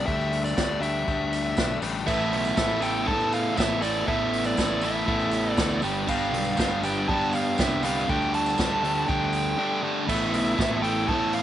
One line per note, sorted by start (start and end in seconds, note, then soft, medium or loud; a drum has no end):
0.06 0.54 D2 medium
0.06 0.56 D3 medium
0.06 0.56 G3 loud
0.06 0.57 A3 loud
0.06 0.57 D4 loud
0.06 0.57 G4 loud
0.06 0.44 E5 loud
0.06 kick loud
0.06 tambourine soft
0.21 tambourine soft
0.33 open hi-hat medium
0.33 tambourine soft
0.44 0.81 D5 medium
0.44 tambourine medium
0.57 1.04 D2 medium
0.57 0.79 D3 medium
0.57 0.80 G3 medium
0.57 0.81 A3 medium
0.57 0.81 D4 loud
0.57 0.81 G4 medium
0.57 kick loud
0.57 snare loud
0.57 tambourine loud
0.80 1.05 D3 medium
0.80 1.06 G3 medium
0.80 1.07 A3 medium
0.80 1.07 D4 medium
0.80 1.07 G4 medium
0.80 1.78 E5 medium
0.80 open hi-hat medium
0.80 tambourine medium
1.06 1.54 D2 medium
1.06 1.56 D3 medium
1.06 1.56 G3 loud
1.06 1.58 A3 loud
1.06 1.57 D4 loud
1.06 1.57 G4 loud
1.06 kick loud
1.06 tambourine soft
1.33 open hi-hat medium
1.33 tambourine medium
1.57 1.80 B1 medium
1.57 1.81 D3 medium
1.57 1.81 G3 medium
1.57 1.83 A3 medium
1.57 1.82 D4 loud
1.57 1.83 G4 loud
1.57 kick loud
1.57 snare loud
1.57 tambourine loud
1.70 tambourine soft
1.82 2.05 A1 medium
1.82 2.06 D3 medium
1.82 2.06 G3 loud
1.82 2.06 A3 medium
1.82 2.06 D4 medium
1.82 2.07 G4 medium
1.82 open hi-hat medium
1.82 tambourine medium
1.97 snare soft
2.06 2.33 A1 loud
2.06 2.55 A2 loud
2.06 2.55 E3 loud
2.06 2.56 A3 loud
2.06 2.56 B3 loud
2.06 2.57 E4 loud
2.06 2.57 A4 loud
2.06 2.85 E5 medium
2.06 kick loud
2.06 crash medium
2.32 2.56 B1 medium
2.32 open hi-hat medium
2.45 tambourine medium
2.56 3.09 A1 medium
2.56 2.79 A2 medium
2.56 2.80 E3 medium
2.56 2.80 A3 loud
2.56 2.81 B3 medium
2.56 2.81 E4 medium
2.56 2.82 A4 loud
2.56 kick loud
2.56 snare loud
2.56 tambourine loud
2.70 tambourine soft
2.81 3.04 A2 medium
2.81 3.05 E3 medium
2.81 3.05 A3 medium
2.81 3.06 B3 medium
2.81 3.05 E4 medium
2.81 3.07 A4 medium
2.81 3.07 G5 loud
2.81 open hi-hat medium
2.81 tambourine medium
3.05 3.55 A2 loud
3.05 3.54 A2 medium
3.05 3.55 E3 loud
3.05 3.56 A3 loud
3.05 3.56 B3 loud
3.05 3.56 E4 loud
3.05 3.57 A4 loud
3.05 3.31 A5 loud
3.05 kick loud
3.20 tambourine soft
3.32 3.58 F5 loud
3.32 open hi-hat medium
3.32 tambourine medium
3.56 4.04 A1 medium
3.56 3.80 A2 medium
3.56 3.80 E3 medium
3.56 3.80 A3 loud
3.56 3.82 B3 loud
3.56 3.81 E4 medium
3.56 3.83 A4 loud
3.56 3.81 E5 loud
3.56 kick loud
3.56 tambourine loud
3.60 snare loud
3.70 tambourine soft
3.81 4.05 A2 medium
3.81 4.06 E3 medium
3.81 4.06 A3 medium
3.81 4.06 B3 medium
3.81 4.07 E4 loud
3.81 4.08 A4 medium
3.81 4.06 D5 medium
3.81 open hi-hat loud
3.81 tambourine medium
4.06 4.54 A1 loud
4.06 4.55 A2 loud
4.06 4.56 E3 loud
4.06 4.56 A3 loud
4.06 4.57 B3 loud
4.06 4.57 E4 loud
4.06 4.58 A4 loud
4.06 4.43 E5 medium
4.06 kick loud
4.33 open hi-hat medium
4.44 4.84 D5 medium
4.44 tambourine medium
4.56 5.04 A1 medium
4.56 4.82 A2 medium
4.56 4.82 E3 medium
4.56 4.83 A3 medium
4.56 4.83 B3 medium
4.56 4.83 E4 loud
4.56 4.84 A4 medium
4.56 kick loud
4.56 snare loud
4.56 tambourine loud
4.81 5.05 A2 medium
4.81 5.06 E3 medium
4.81 5.06 A3 medium
4.81 5.06 B3 medium
4.81 5.06 E4 medium
4.81 5.07 A4 loud
4.81 5.52 E5 medium
4.81 open hi-hat medium
4.81 tambourine medium
5.06 5.57 A1 medium
5.06 5.56 A2 loud
5.06 5.57 E3 loud
5.06 5.57 A3 medium
5.06 5.57 B3 loud
5.06 5.58 E4 loud
5.06 5.59 A4 loud
5.06 kick loud
5.19 tambourine soft
5.31 open hi-hat medium
5.31 tambourine medium
5.52 5.80 D5 medium
5.57 5.81 D2 medium
5.57 5.81 A2 medium
5.57 5.82 E3 medium
5.57 5.82 A3 medium
5.57 5.82 B3 medium
5.57 5.82 E4 loud
5.57 5.84 A4 medium
5.57 kick loud
5.57 snare loud
5.57 tambourine medium
5.70 tambourine soft
5.82 6.32 G1 medium
5.82 6.04 G2 loud
5.82 6.05 D3 medium
5.82 6.07 G3 loud
5.82 6.08 B3 loud
5.82 6.09 D4 loud
5.82 6.10 G4 loud
5.82 open hi-hat medium
5.82 tambourine medium
6.05 6.56 G2 loud
6.05 6.56 D3 loud
6.05 6.57 G3 loud
6.05 6.57 B3 loud
6.05 kick loud
6.05 crash loud
6.09 6.58 D4 loud
6.09 6.58 G4 loud
6.09 6.80 F5 medium
6.32 6.56 B1 medium
6.32 open hi-hat medium
6.45 tambourine medium
6.57 7.10 G1 loud
6.57 6.81 G2 medium
6.57 6.82 D3 medium
6.57 6.82 G3 medium
6.57 6.82 B3 medium
6.57 6.83 D4 medium
6.57 6.84 G4 loud
6.57 kick loud
6.57 snare loud
6.57 tambourine medium
6.71 tambourine soft
6.82 7.06 G2 medium
6.82 7.07 D3 medium
6.82 7.07 G3 medium
6.82 7.07 B3 medium
6.82 7.07 D4 medium
6.82 7.08 G4 medium
6.82 7.08 G5 loud
6.82 open hi-hat medium
6.82 tambourine medium
7.08 7.56 G2 loud
7.08 7.55 G2 loud
7.08 7.57 D3 medium
7.08 7.57 G3 medium
7.08 7.58 B3 loud
7.08 7.59 D4 loud
7.08 7.59 G4 loud
7.08 7.34 A5 loud
7.08 kick loud
7.21 tambourine soft
7.33 7.56 F5 loud
7.33 open hi-hat medium
7.33 tambourine medium
7.58 8.05 C2 medium
7.58 7.82 G2 medium
7.58 7.83 D3 loud
7.58 7.83 G3 medium
7.58 7.83 B3 loud
7.58 7.83 D4 loud
7.58 7.84 G4 loud
7.58 7.84 E5 loud
7.58 kick loud
7.58 snare loud
7.58 tambourine loud
7.83 8.07 G2 loud
7.83 8.07 D3 loud
7.83 8.07 G3 medium
7.83 8.07 B3 medium
7.83 8.07 D4 medium
7.83 8.08 G4 loud
7.83 8.09 F5 loud
7.83 open hi-hat loud
7.83 tambourine medium
7.98 snare soft
8.08 8.54 D2 loud
8.08 8.57 D3 loud
8.08 8.58 G3 loud
8.08 8.58 A3 loud
8.08 8.59 D4 loud
8.08 8.58 G4 loud
8.08 8.58 A4 loud
8.08 8.34 G5 loud
8.08 kick loud
8.08 tambourine soft
8.22 tambourine soft
8.34 9.08 A5 loud
8.34 open hi-hat loud
8.34 tambourine soft
8.46 tambourine medium
8.58 9.04 D2 medium
8.58 8.82 D3 medium
8.58 8.82 G3 medium
8.58 8.83 A3 medium
8.58 8.84 D4 medium
8.58 8.85 G4 medium
8.58 8.83 A4 loud
8.58 kick loud
8.58 snare loud
8.58 tambourine loud
8.70 tambourine soft
8.84 9.07 D3 medium
8.84 9.07 G3 medium
8.84 9.08 A3 medium
8.84 9.09 D4 medium
8.84 9.09 G4 loud
8.84 9.08 A4 medium
8.84 open hi-hat medium
8.95 tambourine soft
9.08 9.54 D2 medium
9.08 9.56 D3 loud
9.08 9.56 G3 loud
9.08 9.58 A3 loud
9.08 9.57 D4 loud
9.08 9.57 G4 loud
9.08 9.58 A4 loud
9.08 9.79 G5 medium
9.08 kick loud
9.08 tambourine soft
9.33 open hi-hat medium
9.33 tambourine medium
9.45 tambourine soft
9.57 9.81 D3 medium
9.57 9.82 G3 medium
9.57 9.83 A3 medium
9.57 9.82 D4 loud
9.57 9.83 G4 loud
9.57 9.83 A4 loud
9.82 10.06 D3 medium
9.82 10.06 G3 medium
9.82 10.06 A3 medium
9.82 10.07 D4 loud
9.82 10.07 G4 medium
9.82 10.07 A4 loud
10.06 10.33 A1 loud
10.06 10.56 A2 loud
10.06 10.57 E3 loud
10.06 10.57 A3 loud
10.06 10.57 B3 loud
10.06 10.58 E4 loud
10.06 10.59 A4 loud
10.06 10.79 E5 medium
10.06 kick loud
10.06 crash loud
10.33 10.56 B1 loud
10.33 open hi-hat loud
10.57 11.10 A1 medium
10.57 10.80 A2 medium
10.57 10.80 E3 loud
10.57 10.81 A3 medium
10.57 10.81 B3 medium
10.57 10.81 E4 loud
10.57 10.82 A4 loud
10.57 kick loud
10.57 snare loud
10.81 11.06 A2 medium
10.81 11.07 E3 medium
10.81 11.05 A3 medium
10.81 11.06 B3 medium
10.81 11.06 E4 medium
10.81 11.08 A4 medium
10.81 11.08 G5 loud
10.81 open hi-hat medium
11.06 11.43 A2 loud
11.06 11.43 E3 loud
11.06 11.43 A3 loud
11.06 11.43 B3 loud
11.06 11.43 E4 loud
11.06 11.43 A4 loud
11.06 11.34 A5 loud
11.06 kick loud
11.33 11.43 F5 loud
11.33 open hi-hat medium